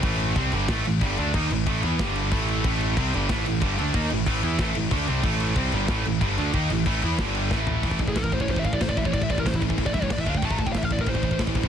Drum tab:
CC |x-x-x-x-x-x-x-x-|x-x-x-x-x-x-x-x-|x-x-x-x-x-x-x-x-|x-x-x-x-x-x-x-x-|
SD |--------o-------|--------o-------|--------o-------|--------o-------|
FT |----------------|----------------|----------------|----------------|
BD |o---o---o---o---|o---o---o---o---|o---o---o---o---|o---o---o---o---|

CC |x-x-x-x-x-x-x-x-|x-x-x-x-x-x-----|x-x-x-x-x-x-x-x-|x-x-x-x-x-x-x-x-|
SD |--------o-------|--------o---o---|----o-------o---|----o-------o---|
FT |----------------|--------------o-|----------------|----------------|
BD |o---o---o---o---|o---o---o---o---|oooooooooooooooo|oooooooooooooooo|

CC |x-x-x-x-x-x-x-x-|
SD |----o-------o---|
FT |----------------|
BD |oooooooooooooooo|